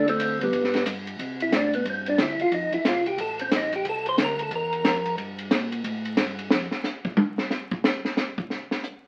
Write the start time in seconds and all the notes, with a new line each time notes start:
Already playing: D2
0.08 A3 C4, ride
0.20 hi-hat pedal, ride
0.41 G3 B3, ride
0.53 G2, kick, ride
0.64 snare
0.74 snare, ride
0.85 G2, cross-stick, hi-hat pedal, ride
1.07 ride
1.19 C3, kick, ride
1.40 E4, ride
1.52 A2 D4, kick, snare, hi-hat pedal, ride
1.73 B3, ride
1.85 G2, kick, ride
1.90 C4
2.06 D4, ride
2.18 D2 E4, kick, snare, hi-hat pedal, ride
2.38 D2 F4, ride
2.51 F2 D#4, kick, ride
2.72 F2 E4, ride
2.85 C2 F4, kick, snare, hi-hat pedal, ride
3.06 G4, ride
3.18 A1 A4, kick, ride
3.39 C4, ride
3.51 A#1, kick, snare, hi-hat pedal, ride
3.56 D#4
3.73 G4, ride
3.85 C2, kick, ride
3.89 A4
4.06 C5, ride
4.18 D2, kick, snare, hi-hat pedal, ride
4.23 A#4
4.39 A4, ride
4.51 E2, kick, ride
4.55 A#4
4.73 ride
4.84 F2, kick, snare, hi-hat pedal, ride
5.05 ride
5.17 G2, kick, ride
5.38 ride
5.51 A#2, kick, snare, hi-hat pedal, ride
5.72 ride
5.84 A2, kick, ride
6.05 ride
6.17 G2, kick, snare, hi-hat pedal, ride
6.39 ride
6.50 F2, snare
6.71 snare
6.84 snare, hi-hat pedal
7.05 kick
7.17 high tom
7.38 snare
7.50 snare, hi-hat pedal
7.71 kick
7.84 snare
8.05 snare
8.17 snare, hi-hat pedal
8.38 kick
8.50 snare
8.71 snare
8.83 hi-hat pedal